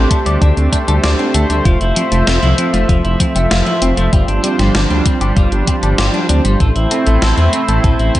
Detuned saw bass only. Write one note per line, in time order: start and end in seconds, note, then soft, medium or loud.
0.26 0.37 D2 medium
0.42 0.53 D2 loud
0.57 0.68 D2 medium
0.88 0.99 D2 medium
1.04 1.15 D2 loud
1.34 1.45 D2 loud
1.50 1.61 D2 medium
1.65 1.76 F1 loud
1.81 1.92 F1 medium
2.12 2.23 F1 medium
2.27 2.38 F1 loud
2.43 2.54 C2 medium
2.74 2.85 F1 medium
2.89 3.00 F1 loud
3.05 3.16 F1 medium
3.36 3.47 F1 medium
3.51 3.62 F1 loud
3.82 3.93 F1 medium
3.97 4.08 F1 medium
4.13 4.24 G1 loud
4.28 4.39 G1 medium
4.59 4.70 G1 medium
4.75 4.86 G1 loud
4.90 5.01 D2 medium
5.21 5.32 G1 medium
5.37 5.48 G1 loud
5.52 5.63 G1 medium
5.83 5.94 G1 medium
5.98 6.09 G1 loud
6.29 6.40 D2 medium
6.45 6.56 G1 medium
6.60 6.71 A1 loud
6.76 6.87 A1 medium
7.07 7.18 A1 medium
7.22 7.33 A1 loud
7.37 7.49 E2 medium
7.68 7.79 A1 medium
7.84 7.95 A1 loud
7.99 8.10 A1 medium